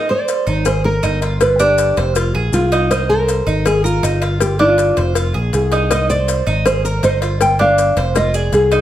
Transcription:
0.09 C5 D5
0.28 cowbell, maracas
0.47 G#1 D#4, maracas
0.55 C5
0.65 G#4 C5, cowbell, maracas
0.84 A#4
1.03 G1 D#4, cowbell, maracas
1.22 F4, cowbell, maracas
1.41 B4, cowbell, maracas
1.59 D4 G4, cowbell, maracas
1.78 cowbell, maracas
1.97 F1 C5, cowbell, maracas
2.15 F4, cowbell, maracas
2.35 A#1 G#4
2.52 C2 F4, cowbell, maracas
2.72 D#4, cowbell, maracas
2.91 D#4 C5, cowbell, maracas
3.09 A#4 C5
3.29 cowbell, maracas
3.46 G#1 D#4, maracas
3.65 G#4, cowbell, maracas
3.84 F4 A#4, maracas
4.03 G1 D#4, cowbell, maracas
4.22 F4, cowbell, maracas
4.40 G4, cowbell, maracas
4.59 D4 F4, cowbell
4.78 cowbell, maracas
4.97 F1 C5, cowbell, maracas
5.15 F4, cowbell, maracas
5.34 A#1 G#4
5.53 C2 G#4, cowbell, maracas
5.72 D#4, cowbell, maracas
5.91 D#4 D#5, cowbell, maracas
6.10 C5 D5, maracas
6.28 cowbell, maracas
6.47 G#1 D#4, maracas
6.65 G#4 C5, cowbell, maracas
6.84 A#4, maracas
7.03 G1 D#4 C5, cowbell, maracas
7.22 F4, cowbell, maracas
7.41 G5, cowbell, maracas
7.59 D4 F5, cowbell
7.78 cowbell, maracas
7.97 F1 C5, cowbell, maracas
8.15 F4 D#5, cowbell, maracas
8.34 G#4 D5, maracas
8.52 C2 G#4, cowbell, maracas
8.72 D#4, cowbell, maracas

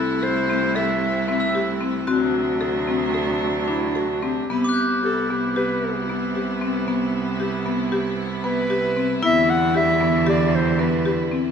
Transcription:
Already playing: C2 C3 A3 C4 E4 A4
0.23 A4 C5
0.50 C4
0.75 A4 E5
1.28 C4 E5
1.40 E6
1.55 G4
1.81 C4
2.07 D2 C3 F#3 C4 D4 F#4
2.61 A4
2.87 C4
3.14 A4
3.68 D4 E4
3.95 F#4 A4
4.23 C4 G4
4.50 C2 C3 B3 E4
4.64 D6
4.69 F#6
4.74 G6
5.03 G4 A4
5.30 B3 G4
5.56 G4 B4
6.09 B3
6.35 G4
6.61 C4
6.88 B3
7.40 G4
7.66 B3
7.92 G4
8.44 B3 B4
8.70 G4
8.96 C4
9.22 E2 D3 G3 B3 E4 E5
9.50 F#5
9.74 G4 E5
10.01 B3
10.26 G4 D5
10.55 C5
10.79 B3 B4
11.05 G4
11.31 C4

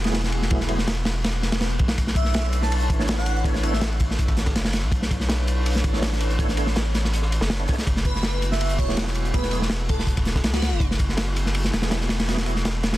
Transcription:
Already playing: E1
0.04 F#3 A3 B3 E4 G#4, snare, ride
0.13 snare, ride
0.24 snare
0.32 ride
0.42 snare
0.50 F#3 A3 B3 E4 G#4, kick, ride
0.60 snare
0.68 F#3 A3 B3 E4 G#4, ride
0.78 snare
0.88 snare, ride
0.97 ride
1.05 snare, ride
1.24 snare, ride, swell
1.34 ride
1.43 snare, ride
1.52 snare, ride
1.61 snare, ride
1.70 ride
1.79 B1, kick, ride
1.88 snare, ride
1.98 B1 D4 E4 A4 B4 C#5, kick, closed hi-hat, ride
2.07 snare
2.15 E5, kick, closed hi-hat, ride
2.25 snare
2.34 snare, closed hi-hat, ride
2.53 closed hi-hat, ride
2.62 A5, snare
2.71 open hi-hat, ride
2.81 closed hi-hat
2.90 A1, kick, closed hi-hat, ride
2.99 B3 D4 E4 A4 C#5, snare
3.08 snare, closed hi-hat, ride
3.17 F#5, snare, closed hi-hat
3.26 closed hi-hat, ride
3.36 closed hi-hat
3.44 B3 D4 E4 A4 C#5, kick, closed hi-hat, ride
3.54 snare, closed hi-hat
3.63 B3 D4 E4 A4 C#5 E5, closed hi-hat, ride
3.73 E5, snare
3.81 snare, closed hi-hat, ride
3.92 ride
4.00 kick, closed hi-hat, ride
4.11 snare
4.19 kick, closed hi-hat, ride
4.28 kick, snare, ride
4.37 snare, closed hi-hat
4.46 kick, snare, ride
4.55 F#1, snare, closed hi-hat, ride
4.65 snare, ride
4.73 snare, closed hi-hat, ride
4.83 B1, ride
4.91 B1 D4 E4 A4 B4 C#5, kick, closed hi-hat, ride
5.02 snare
5.11 kick, closed hi-hat, ride
5.20 snare
5.29 snare, closed hi-hat, ride
5.48 closed hi-hat, ride
5.66 open hi-hat, ride
5.76 snare, closed hi-hat
5.84 A1, kick, closed hi-hat, ride
5.93 B3 D4 E4 A4 C#5, snare
6.02 snare, closed hi-hat, ride
6.12 snare, closed hi-hat
6.20 closed hi-hat, ride
6.30 closed hi-hat
6.39 B3 D4 E4 A4 C#5, kick, closed hi-hat, ride
6.49 snare, closed hi-hat
6.57 B3 D4 E4 A4 C#5, closed hi-hat, ride
6.67 snare
6.76 snare, closed hi-hat, ride
6.86 ride
6.95 snare, closed hi-hat, ride
7.04 snare
7.13 closed hi-hat
7.22 snare
7.32 closed hi-hat, ride
7.41 F#1, snare
7.50 snare, closed hi-hat, ride
7.59 B3 D4 E4 A4 C#5, ride
7.68 kick, snare, closed hi-hat, ride
7.73 snare, closed hi-hat
7.78 snare, closed hi-hat
7.82 snare, closed hi-hat
7.86 F#1 A3 B3 E4 F#4 G#4, kick, closed hi-hat, ride
7.96 snare
8.05 B4, kick, closed hi-hat, ride
8.15 snare
8.23 snare, closed hi-hat, ride
8.42 closed hi-hat, ride
8.51 E5, snare
8.60 open hi-hat, ride
8.69 closed hi-hat
8.79 E1 C#5, kick, closed hi-hat, ride
8.88 F#3 A3 B3 E4 G#4, snare
8.97 snare, closed hi-hat, ride
9.07 snare, closed hi-hat
9.15 closed hi-hat, ride
9.25 closed hi-hat
9.34 F#3 A3 B3 E4 G#4 B4, kick, closed hi-hat, ride
9.42 snare, closed hi-hat
9.51 F#3 A3 B3 E4 G#4, closed hi-hat, ride
9.62 snare
9.70 snare, closed hi-hat, ride
9.81 ride
9.89 A4, kick, closed hi-hat, ride
9.99 A4, snare
10.07 kick, closed hi-hat, ride
10.17 kick, snare, ride
10.25 snare, closed hi-hat
10.35 kick, snare, ride
10.44 C#2, snare, closed hi-hat, ride
10.54 F#4, snare, ride
10.62 snare, closed hi-hat, ride
10.72 F#1, ride
10.80 F#1 A3 B3 E4 F#4 G#4, kick, closed hi-hat, ride
10.91 snare
10.99 kick, closed hi-hat, ride
11.09 snare
11.17 snare, closed hi-hat, ride
11.36 closed hi-hat, ride
11.46 snare
11.54 open hi-hat, ride
11.64 snare, closed hi-hat
11.73 E1, snare, closed hi-hat, ride
11.82 F#3 A3 B3 E4 G#4, snare, ride
11.91 snare, closed hi-hat, ride
12.01 snare, closed hi-hat
12.09 snare, closed hi-hat, ride
12.19 snare, closed hi-hat, ride
12.28 F#3 A3 B3 E4 G#4, snare, closed hi-hat, ride
12.37 snare, closed hi-hat, ride
12.46 F#3 A3 B3 E4 G#4, closed hi-hat, ride
12.56 snare
12.65 snare, closed hi-hat, ride
12.74 ride
12.83 snare, closed hi-hat, ride
12.93 snare, closed hi-hat, ride

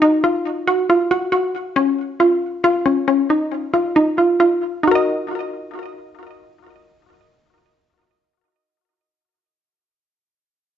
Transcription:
0.02 D#4
0.24 F4
0.67 F#4
0.90 F4
1.11 F#4
1.32 F#4
1.76 C#4
2.20 F4
2.64 F4
2.86 C#4
3.08 C#4
3.30 D#4
3.74 F4
3.96 D#4
4.18 F4
4.40 F4
4.83 D#4
4.87 F#4 A#4
4.95 D#5

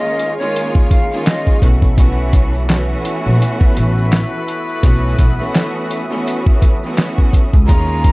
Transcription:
Already playing: D#3 G#3 A#3 C#4 F4 G#4 A#4 D#5 F5 C#6 F6
0.19 closed hi-hat, shaker
0.38 D#3 G#3 A#3 C#4 F4 C#5
0.55 closed hi-hat, shaker
0.75 kick
0.91 F5, kick, closed hi-hat, shaker
1.11 D#3 G#3 A#3 C#4 F4, shaker
1.25 D#5, snare, clap, closed hi-hat, shaker
1.47 kick
1.60 B1 E3 A3 B3 C#4 F#4 A4 E5 B5, kick, closed hi-hat, shaker
1.82 kick, shaker
1.96 E3 A3 B3 C#4 F#4, kick, closed hi-hat, shaker
2.33 kick, closed hi-hat, shaker
2.53 shaker
2.69 E3 A3 B3 C#4 F#4, snare, clap, closed hi-hat, shaker
3.05 E4 F#4 B4, closed hi-hat, shaker
3.26 A#1
3.41 closed hi-hat, shaker
3.61 kick
3.76 A1, closed hi-hat, shaker
3.98 shaker
4.11 snare, clap, closed hi-hat, shaker
4.47 D#6, closed hi-hat, shaker
4.68 shaker
4.82 B1 E3 A3 B3 C#4 F#4, kick, closed hi-hat, shaker
5.19 B1, kick, closed hi-hat, shaker
5.38 E3 A3 B3 C#4 F#4, shaker
5.54 snare, clap, closed hi-hat, shaker
5.91 closed hi-hat, shaker
6.09 E3 A3 B3 C#4 F#4
6.26 closed hi-hat, shaker
6.46 kick
6.62 kick, closed hi-hat, shaker
6.83 E3 A3 B3 C#4 F#4, shaker
6.97 snare, clap, closed hi-hat, shaker
7.18 kick
7.33 kick, closed hi-hat, shaker
7.53 C#2, kick, shaker
7.66 D#2 D#3 G#3 A#3 C#4 F4 G#4 A#4 F5 A#5 C#6 D#6, kick, closed hi-hat, shaker
8.04 kick, closed hi-hat, shaker

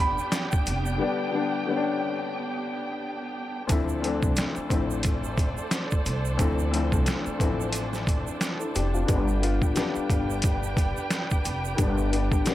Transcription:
Already playing: G1 D3 G3 B3 D4 F4 G4 G5
0.00 B5, closed hi-hat
0.18 shaker
0.32 snare, closed hi-hat, shaker
0.52 kick, shaker
0.66 F1, closed hi-hat, shaker
0.86 shaker
0.97 D3 G3 B3
1.02 D4
1.31 D3 G3 B3
1.35 D4
1.66 D3 G3 B3
1.70 C#4
1.77 D4
3.67 D2 F3 A3 C4 D4 A4 C5 D5, kick, closed hi-hat, shaker
3.71 E4
3.89 shaker
4.01 D2 F3 A3 C4, closed hi-hat
4.06 D4
4.23 C2, kick, shaker
4.36 snare, closed hi-hat, shaker
4.56 muted upright bass stroke, shaker
4.69 A1 D2 F3 A3 C4, kick, closed hi-hat, shaker
4.73 E4
4.91 shaker
5.03 kick, closed hi-hat, shaker
5.24 shaker
5.38 kick, closed hi-hat, shaker
5.57 shaker
5.71 snare, closed hi-hat, shaker
5.91 kick, shaker
6.06 C2, closed hi-hat, shaker
6.25 shaker
6.37 D2 F3 A3 C4, kick, closed hi-hat, shaker
6.42 E4
6.59 shaker
6.71 D2 F3 A3 C4, closed hi-hat
6.75 E4
6.92 C2, kick, shaker
7.06 snare, closed hi-hat, shaker
7.26 muted upright bass stroke, shaker
7.39 A1 D2 E3 A3 C4, kick, closed hi-hat, shaker
7.43 F3 E4
7.61 shaker
7.73 closed hi-hat, shaker
7.93 snare, shaker
8.07 kick, closed hi-hat, shaker
8.27 shaker
8.41 snare, closed hi-hat, shaker
8.59 E4 A4, shaker
8.75 F1 D4 G4, closed hi-hat, shaker
8.94 C4 F4, shaker
9.06 G1 D3 G3 B3 G4 B4 G5, kick, closed hi-hat, shaker
9.10 D4
9.28 shaker
9.39 D3 G3 B3
9.43 F4, closed hi-hat
9.62 A1, kick, shaker
9.74 D3 G3 B3, snare, closed hi-hat, shaker
9.78 D4
9.95 muted upright bass stroke, shaker
10.10 G1, kick, closed hi-hat, shaker
10.30 shaker
10.42 kick, closed hi-hat, shaker
10.63 shaker
10.77 kick, closed hi-hat, shaker
10.97 shaker
11.11 snare, closed hi-hat, shaker
11.30 kick, shaker
11.45 F1, closed hi-hat, shaker
11.65 shaker
11.76 G1 D3 G3 B3, kick, closed hi-hat, shaker
11.81 D4
11.98 shaker
12.09 D3 G3 B3, closed hi-hat
12.14 D4
12.32 A1, kick, shaker
12.45 D3 G3 B3, snare, closed hi-hat, shaker
12.49 C#4

